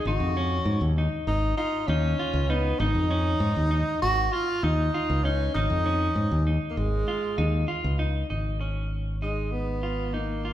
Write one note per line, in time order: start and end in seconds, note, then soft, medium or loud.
0.05 0.18 G#1 medium
0.05 0.33 D#4 medium
0.05 0.94 F#4 medium
0.20 0.58 F2 medium
0.37 0.91 C#4 medium
0.65 0.79 G#2 medium
0.81 1.07 D#2 medium
0.98 1.52 D#4 medium
1.27 1.53 G#1 medium
1.27 1.56 D#4 medium
1.57 1.89 D#4 medium
1.57 1.85 F4 medium
1.87 2.14 D#2 medium
1.87 2.52 C#4 medium
1.87 2.16 D#4 medium
2.19 2.46 F4 medium
2.33 2.72 C#2 medium
2.50 2.81 B3 medium
2.50 2.77 D#4 medium
2.79 2.92 G#1 medium
2.79 4.01 D#4 medium
2.79 3.07 D#4 medium
2.95 3.33 F2 medium
3.11 3.65 C#4 medium
3.40 3.53 G#2 medium
3.56 3.82 D#2 medium
3.71 4.25 D#4 medium
4.02 4.28 G#1 medium
4.02 4.34 F#4 loud
4.32 4.65 F4 medium
4.32 4.60 F4 medium
4.63 4.89 D#2 medium
4.63 5.25 D#4 medium
4.63 4.91 D#4 medium
4.94 5.21 F4 medium
5.10 5.47 C#2 medium
5.24 5.53 C#4 medium
5.24 5.52 D#4 medium
5.54 5.68 G#1 medium
5.54 6.46 D#4 medium
5.54 5.83 D#4 medium
5.70 6.08 F2 medium
5.86 6.40 C#4 medium
6.15 6.28 G#2 medium
6.31 6.57 D#2 medium
6.47 7.01 D#4 medium
6.70 6.79 A#3 soft
6.77 7.03 G#1 medium
6.77 7.69 G#3 medium
7.08 7.35 F4 medium
7.38 7.64 D#2 medium
7.38 7.65 D#4 medium
7.68 7.96 F4 medium
7.84 8.22 C#2 medium
7.99 8.27 D#4 medium
8.30 10.53 G#1 medium
8.30 8.57 D#4 medium
8.61 9.15 C#4 soft
9.22 9.53 G#3 medium
9.22 9.77 D#4 medium
9.52 10.15 B3 medium
9.83 10.11 F4 medium
10.14 10.53 A#3 medium
10.14 10.41 D#4 medium
10.45 10.53 F4 medium